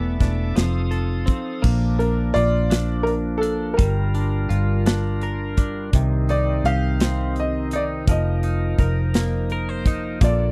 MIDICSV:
0, 0, Header, 1, 7, 480
1, 0, Start_track
1, 0, Key_signature, -2, "major"
1, 0, Tempo, 714286
1, 1103, Time_signature, 6, 3, 24, 8
1, 7068, End_track
2, 0, Start_track
2, 0, Title_t, "Grand piano"
2, 0, Program_c, 0, 0
2, 1338, Note_on_c, 0, 70, 90
2, 1571, Note_on_c, 0, 74, 127
2, 1588, Note_off_c, 0, 70, 0
2, 2038, Note_on_c, 0, 70, 103
2, 2073, Note_off_c, 0, 74, 0
2, 2095, Note_off_c, 0, 70, 0
2, 2269, Note_on_c, 0, 69, 101
2, 2511, Note_on_c, 0, 70, 89
2, 2535, Note_off_c, 0, 69, 0
2, 3702, Note_off_c, 0, 70, 0
2, 4236, Note_on_c, 0, 74, 101
2, 4473, Note_on_c, 0, 77, 127
2, 4478, Note_off_c, 0, 74, 0
2, 4922, Note_off_c, 0, 77, 0
2, 4971, Note_on_c, 0, 75, 104
2, 5205, Note_off_c, 0, 75, 0
2, 5211, Note_on_c, 0, 74, 103
2, 5262, Note_off_c, 0, 74, 0
2, 5449, Note_on_c, 0, 75, 95
2, 6609, Note_off_c, 0, 75, 0
2, 6882, Note_on_c, 0, 74, 99
2, 7068, Note_off_c, 0, 74, 0
2, 7068, End_track
3, 0, Start_track
3, 0, Title_t, "Steel-string acoustic guitar"
3, 0, Program_c, 1, 25
3, 0, Note_on_c, 1, 52, 80
3, 0, Note_on_c, 1, 57, 90
3, 0, Note_on_c, 1, 59, 89
3, 0, Note_on_c, 1, 69, 94
3, 0, Note_on_c, 1, 74, 100
3, 124, Note_off_c, 1, 59, 0
3, 132, Note_on_c, 1, 59, 72
3, 137, Note_off_c, 1, 57, 0
3, 139, Note_off_c, 1, 52, 0
3, 140, Note_on_c, 1, 57, 82
3, 142, Note_off_c, 1, 74, 0
3, 143, Note_off_c, 1, 69, 0
3, 146, Note_on_c, 1, 69, 78
3, 150, Note_on_c, 1, 74, 79
3, 373, Note_off_c, 1, 69, 0
3, 374, Note_off_c, 1, 74, 0
3, 377, Note_off_c, 1, 59, 0
3, 377, Note_on_c, 1, 72, 88
3, 380, Note_off_c, 1, 57, 0
3, 381, Note_on_c, 1, 69, 76
3, 383, Note_on_c, 1, 63, 68
3, 385, Note_on_c, 1, 60, 70
3, 388, Note_on_c, 1, 53, 62
3, 849, Note_off_c, 1, 72, 0
3, 857, Note_on_c, 1, 72, 52
3, 861, Note_off_c, 1, 69, 0
3, 863, Note_off_c, 1, 63, 0
3, 864, Note_on_c, 1, 69, 55
3, 865, Note_off_c, 1, 60, 0
3, 872, Note_on_c, 1, 63, 52
3, 892, Note_off_c, 1, 53, 0
3, 1100, Note_off_c, 1, 72, 0
3, 1104, Note_off_c, 1, 69, 0
3, 1108, Note_off_c, 1, 63, 0
3, 6861, Note_on_c, 1, 58, 79
3, 6863, Note_on_c, 1, 65, 90
3, 6867, Note_on_c, 1, 69, 89
3, 6869, Note_on_c, 1, 74, 101
3, 7068, Note_off_c, 1, 58, 0
3, 7068, Note_off_c, 1, 65, 0
3, 7068, Note_off_c, 1, 69, 0
3, 7068, Note_off_c, 1, 74, 0
3, 7068, End_track
4, 0, Start_track
4, 0, Title_t, "Tonewheel organ"
4, 0, Program_c, 2, 16
4, 0, Note_on_c, 2, 69, 60
4, 0, Note_on_c, 2, 76, 57
4, 0, Note_on_c, 2, 86, 70
4, 370, Note_off_c, 2, 69, 0
4, 373, Note_off_c, 2, 76, 0
4, 373, Note_off_c, 2, 86, 0
4, 384, Note_on_c, 2, 69, 58
4, 385, Note_on_c, 2, 77, 53
4, 390, Note_on_c, 2, 87, 71
4, 1097, Note_off_c, 2, 69, 0
4, 1098, Note_off_c, 2, 77, 0
4, 1098, Note_on_c, 2, 62, 68
4, 1099, Note_on_c, 2, 58, 60
4, 1100, Note_off_c, 2, 87, 0
4, 1102, Note_on_c, 2, 53, 69
4, 2528, Note_off_c, 2, 58, 0
4, 2528, Note_off_c, 2, 62, 0
4, 2530, Note_off_c, 2, 53, 0
4, 2538, Note_on_c, 2, 55, 66
4, 2540, Note_on_c, 2, 70, 72
4, 2542, Note_on_c, 2, 65, 60
4, 3968, Note_off_c, 2, 55, 0
4, 3968, Note_off_c, 2, 70, 0
4, 3969, Note_off_c, 2, 65, 0
4, 3999, Note_on_c, 2, 51, 73
4, 3999, Note_on_c, 2, 63, 76
4, 4001, Note_on_c, 2, 60, 66
4, 5415, Note_off_c, 2, 63, 0
4, 5417, Note_off_c, 2, 51, 0
4, 5418, Note_off_c, 2, 60, 0
4, 5423, Note_on_c, 2, 63, 60
4, 5427, Note_on_c, 2, 70, 74
4, 5428, Note_on_c, 2, 53, 70
4, 6848, Note_off_c, 2, 63, 0
4, 6850, Note_off_c, 2, 70, 0
4, 6851, Note_off_c, 2, 53, 0
4, 6871, Note_on_c, 2, 58, 64
4, 6873, Note_on_c, 2, 69, 68
4, 6875, Note_on_c, 2, 62, 74
4, 7068, Note_off_c, 2, 58, 0
4, 7068, Note_off_c, 2, 62, 0
4, 7068, Note_off_c, 2, 69, 0
4, 7068, End_track
5, 0, Start_track
5, 0, Title_t, "Clean electric guitar"
5, 0, Program_c, 3, 27
5, 0, Note_on_c, 3, 52, 78
5, 0, Note_on_c, 3, 59, 64
5, 140, Note_on_c, 3, 62, 57
5, 371, Note_off_c, 3, 52, 0
5, 373, Note_on_c, 3, 53, 78
5, 426, Note_off_c, 3, 59, 0
5, 429, Note_off_c, 3, 62, 0
5, 611, Note_on_c, 3, 69, 63
5, 846, Note_on_c, 3, 60, 58
5, 1088, Note_off_c, 3, 53, 0
5, 1091, Note_on_c, 3, 58, 82
5, 1143, Note_off_c, 3, 60, 0
5, 1336, Note_on_c, 3, 62, 61
5, 1576, Note_on_c, 3, 65, 67
5, 1814, Note_off_c, 3, 62, 0
5, 1817, Note_on_c, 3, 62, 74
5, 2293, Note_off_c, 3, 62, 0
5, 2296, Note_on_c, 3, 62, 66
5, 2534, Note_off_c, 3, 58, 0
5, 2537, Note_on_c, 3, 55, 86
5, 2557, Note_off_c, 3, 69, 0
5, 2784, Note_off_c, 3, 62, 0
5, 2787, Note_on_c, 3, 62, 70
5, 3016, Note_off_c, 3, 65, 0
5, 3018, Note_on_c, 3, 65, 67
5, 3265, Note_off_c, 3, 62, 0
5, 3268, Note_on_c, 3, 62, 78
5, 3514, Note_on_c, 3, 70, 77
5, 3745, Note_off_c, 3, 62, 0
5, 3748, Note_on_c, 3, 62, 68
5, 3997, Note_on_c, 3, 48, 89
5, 4030, Note_off_c, 3, 65, 0
5, 4038, Note_off_c, 3, 70, 0
5, 4229, Note_on_c, 3, 63, 74
5, 4249, Note_off_c, 3, 62, 0
5, 4483, Note_on_c, 3, 67, 66
5, 4712, Note_on_c, 3, 60, 79
5, 4889, Note_off_c, 3, 55, 0
5, 5194, Note_off_c, 3, 63, 0
5, 5197, Note_on_c, 3, 63, 72
5, 5431, Note_off_c, 3, 48, 0
5, 5434, Note_on_c, 3, 53, 93
5, 5482, Note_off_c, 3, 67, 0
5, 5667, Note_off_c, 3, 63, 0
5, 5670, Note_on_c, 3, 63, 67
5, 5911, Note_on_c, 3, 70, 64
5, 5931, Note_off_c, 3, 60, 0
5, 6151, Note_on_c, 3, 58, 69
5, 6397, Note_off_c, 3, 70, 0
5, 6397, Note_on_c, 3, 70, 70
5, 6510, Note_off_c, 3, 70, 0
5, 6510, Note_on_c, 3, 72, 59
5, 6627, Note_off_c, 3, 63, 0
5, 6634, Note_on_c, 3, 63, 61
5, 6860, Note_off_c, 3, 53, 0
5, 6863, Note_off_c, 3, 58, 0
5, 6863, Note_on_c, 3, 58, 85
5, 6915, Note_off_c, 3, 72, 0
5, 6917, Note_off_c, 3, 63, 0
5, 7068, Note_off_c, 3, 58, 0
5, 7068, End_track
6, 0, Start_track
6, 0, Title_t, "Fingered electric bass"
6, 0, Program_c, 4, 33
6, 0, Note_on_c, 4, 28, 100
6, 115, Note_off_c, 4, 28, 0
6, 138, Note_on_c, 4, 28, 87
6, 366, Note_off_c, 4, 28, 0
6, 384, Note_on_c, 4, 29, 94
6, 837, Note_off_c, 4, 29, 0
6, 1102, Note_on_c, 4, 34, 120
6, 1556, Note_off_c, 4, 34, 0
6, 1583, Note_on_c, 4, 34, 98
6, 2518, Note_off_c, 4, 34, 0
6, 2547, Note_on_c, 4, 31, 120
6, 2999, Note_off_c, 4, 31, 0
6, 3026, Note_on_c, 4, 31, 106
6, 3959, Note_off_c, 4, 31, 0
6, 3988, Note_on_c, 4, 36, 121
6, 4440, Note_off_c, 4, 36, 0
6, 4463, Note_on_c, 4, 36, 106
6, 5397, Note_off_c, 4, 36, 0
6, 5427, Note_on_c, 4, 29, 121
6, 5879, Note_off_c, 4, 29, 0
6, 5905, Note_on_c, 4, 29, 103
6, 6837, Note_off_c, 4, 29, 0
6, 6864, Note_on_c, 4, 34, 112
6, 7068, Note_off_c, 4, 34, 0
6, 7068, End_track
7, 0, Start_track
7, 0, Title_t, "Drums"
7, 138, Note_on_c, 9, 36, 93
7, 138, Note_on_c, 9, 42, 49
7, 146, Note_on_c, 9, 38, 33
7, 205, Note_off_c, 9, 36, 0
7, 205, Note_off_c, 9, 42, 0
7, 213, Note_off_c, 9, 38, 0
7, 379, Note_on_c, 9, 42, 87
7, 386, Note_on_c, 9, 38, 100
7, 446, Note_off_c, 9, 42, 0
7, 453, Note_off_c, 9, 38, 0
7, 615, Note_on_c, 9, 42, 42
7, 682, Note_off_c, 9, 42, 0
7, 853, Note_on_c, 9, 42, 60
7, 860, Note_on_c, 9, 36, 89
7, 920, Note_off_c, 9, 42, 0
7, 927, Note_off_c, 9, 36, 0
7, 1100, Note_on_c, 9, 49, 102
7, 1102, Note_on_c, 9, 36, 119
7, 1168, Note_off_c, 9, 49, 0
7, 1169, Note_off_c, 9, 36, 0
7, 1345, Note_on_c, 9, 42, 53
7, 1412, Note_off_c, 9, 42, 0
7, 1586, Note_on_c, 9, 42, 53
7, 1653, Note_off_c, 9, 42, 0
7, 1823, Note_on_c, 9, 42, 101
7, 1830, Note_on_c, 9, 38, 111
7, 1890, Note_off_c, 9, 42, 0
7, 1897, Note_off_c, 9, 38, 0
7, 2062, Note_on_c, 9, 42, 49
7, 2130, Note_off_c, 9, 42, 0
7, 2303, Note_on_c, 9, 42, 66
7, 2370, Note_off_c, 9, 42, 0
7, 2545, Note_on_c, 9, 36, 114
7, 2545, Note_on_c, 9, 42, 90
7, 2613, Note_off_c, 9, 36, 0
7, 2613, Note_off_c, 9, 42, 0
7, 2786, Note_on_c, 9, 42, 53
7, 2853, Note_off_c, 9, 42, 0
7, 3026, Note_on_c, 9, 42, 54
7, 3093, Note_off_c, 9, 42, 0
7, 3268, Note_on_c, 9, 42, 89
7, 3275, Note_on_c, 9, 38, 109
7, 3335, Note_off_c, 9, 42, 0
7, 3342, Note_off_c, 9, 38, 0
7, 3504, Note_on_c, 9, 42, 45
7, 3571, Note_off_c, 9, 42, 0
7, 3745, Note_on_c, 9, 42, 65
7, 3748, Note_on_c, 9, 36, 96
7, 3813, Note_off_c, 9, 42, 0
7, 3815, Note_off_c, 9, 36, 0
7, 3986, Note_on_c, 9, 42, 101
7, 3987, Note_on_c, 9, 36, 126
7, 4053, Note_off_c, 9, 42, 0
7, 4055, Note_off_c, 9, 36, 0
7, 4227, Note_on_c, 9, 42, 52
7, 4294, Note_off_c, 9, 42, 0
7, 4470, Note_on_c, 9, 42, 53
7, 4537, Note_off_c, 9, 42, 0
7, 4706, Note_on_c, 9, 42, 94
7, 4713, Note_on_c, 9, 38, 107
7, 4774, Note_off_c, 9, 42, 0
7, 4781, Note_off_c, 9, 38, 0
7, 4945, Note_on_c, 9, 42, 47
7, 5012, Note_off_c, 9, 42, 0
7, 5182, Note_on_c, 9, 42, 67
7, 5249, Note_off_c, 9, 42, 0
7, 5427, Note_on_c, 9, 36, 126
7, 5427, Note_on_c, 9, 42, 96
7, 5494, Note_off_c, 9, 36, 0
7, 5494, Note_off_c, 9, 42, 0
7, 5665, Note_on_c, 9, 42, 51
7, 5732, Note_off_c, 9, 42, 0
7, 5903, Note_on_c, 9, 42, 50
7, 5904, Note_on_c, 9, 36, 92
7, 5970, Note_off_c, 9, 42, 0
7, 5971, Note_off_c, 9, 36, 0
7, 6143, Note_on_c, 9, 42, 93
7, 6150, Note_on_c, 9, 38, 109
7, 6210, Note_off_c, 9, 42, 0
7, 6217, Note_off_c, 9, 38, 0
7, 6382, Note_on_c, 9, 42, 45
7, 6449, Note_off_c, 9, 42, 0
7, 6623, Note_on_c, 9, 42, 65
7, 6624, Note_on_c, 9, 36, 96
7, 6690, Note_off_c, 9, 42, 0
7, 6691, Note_off_c, 9, 36, 0
7, 6862, Note_on_c, 9, 36, 123
7, 6862, Note_on_c, 9, 42, 97
7, 6930, Note_off_c, 9, 36, 0
7, 6930, Note_off_c, 9, 42, 0
7, 7068, End_track
0, 0, End_of_file